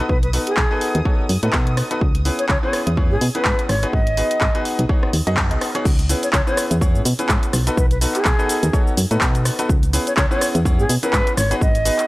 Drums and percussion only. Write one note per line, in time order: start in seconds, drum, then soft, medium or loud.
0.09 kick loud
0.23 closed hi-hat medium
0.33 open hi-hat loud
0.47 closed hi-hat medium
0.57 kick loud
0.57 clap loud
0.81 open hi-hat medium
0.95 closed hi-hat medium
1.05 kick loud
1.29 open hi-hat loud
1.43 closed hi-hat medium
1.53 kick loud
1.53 clap loud
1.67 closed hi-hat soft
1.77 cross-stick medium
1.77 open hi-hat medium
1.91 closed hi-hat medium
2.01 kick loud
2.15 closed hi-hat medium
2.25 open hi-hat medium
2.39 closed hi-hat medium
2.49 kick loud
2.49 clap loud
2.73 cross-stick medium
2.73 open hi-hat medium
2.87 closed hi-hat medium
2.97 kick loud
3.21 open hi-hat loud
3.35 closed hi-hat medium
3.45 kick loud
3.45 clap loud
3.59 closed hi-hat medium
3.69 cross-stick medium
3.69 open hi-hat medium
3.83 closed hi-hat medium
3.93 kick loud
4.07 closed hi-hat medium
4.17 open hi-hat loud
4.31 closed hi-hat medium
4.41 kick loud
4.41 clap loud
4.55 closed hi-hat soft
4.65 open hi-hat medium
4.79 closed hi-hat medium
4.89 kick loud
5.03 cross-stick medium
5.13 open hi-hat loud
5.27 closed hi-hat medium
5.37 kick loud
5.37 clap loud
5.51 closed hi-hat medium
5.61 cross-stick medium
5.61 open hi-hat medium
5.75 closed hi-hat medium
5.85 kick loud
5.85 crash loud
5.85 shaker soft
5.99 closed hi-hat medium
5.99 shaker soft
6.09 open hi-hat loud
6.09 shaker medium
6.23 closed hi-hat medium
6.23 shaker soft
6.33 kick loud
6.33 clap loud
6.33 shaker soft
6.47 shaker soft
6.57 cross-stick medium
6.57 open hi-hat medium
6.57 shaker medium
6.71 closed hi-hat medium
6.71 shaker soft
6.81 kick loud
6.81 shaker soft
6.95 shaker soft
7.05 open hi-hat loud
7.05 shaker medium
7.19 closed hi-hat medium
7.19 shaker soft
7.29 kick loud
7.29 clap loud
7.29 shaker soft
7.43 closed hi-hat medium
7.43 shaker soft
7.53 cross-stick medium
7.53 open hi-hat loud
7.53 shaker medium
7.67 closed hi-hat medium
7.67 shaker soft
7.77 kick loud
7.77 shaker soft
7.91 closed hi-hat medium
7.91 shaker soft
8.01 open hi-hat loud
8.01 shaker medium
8.14 clap soft
8.14 closed hi-hat medium
8.14 shaker soft
8.25 kick loud
8.25 clap loud
8.25 shaker soft
8.39 shaker soft
8.49 open hi-hat loud
8.49 shaker medium
8.63 closed hi-hat medium
8.63 shaker soft
8.73 kick loud
8.73 shaker soft
8.87 shaker soft
8.97 open hi-hat loud
8.97 shaker medium
9.11 closed hi-hat medium
9.11 shaker soft
9.21 kick loud
9.21 clap loud
9.21 shaker soft
9.35 closed hi-hat medium
9.35 shaker soft
9.45 cross-stick medium
9.45 open hi-hat loud
9.45 shaker medium
9.59 closed hi-hat medium
9.59 shaker soft
9.69 kick loud
9.69 shaker soft
9.83 closed hi-hat medium
9.83 shaker soft
9.93 open hi-hat loud
9.93 shaker medium
10.07 closed hi-hat medium
10.07 shaker soft
10.17 kick loud
10.17 clap loud
10.17 shaker soft
10.31 shaker soft
10.41 cross-stick medium
10.41 open hi-hat loud
10.41 shaker medium
10.55 closed hi-hat medium
10.55 shaker soft
10.65 kick loud
10.65 shaker soft
10.79 shaker soft
10.89 open hi-hat loud
10.89 shaker medium
11.03 closed hi-hat medium
11.03 shaker soft
11.13 kick loud
11.13 clap loud
11.13 shaker soft
11.27 closed hi-hat medium
11.27 shaker soft
11.37 cross-stick medium
11.37 open hi-hat loud
11.37 shaker medium
11.51 closed hi-hat medium
11.51 shaker soft
11.61 kick loud
11.61 shaker soft
11.75 closed hi-hat medium
11.75 shaker soft
11.85 open hi-hat loud
11.85 shaker medium
11.98 clap soft
11.98 closed hi-hat medium
11.98 shaker soft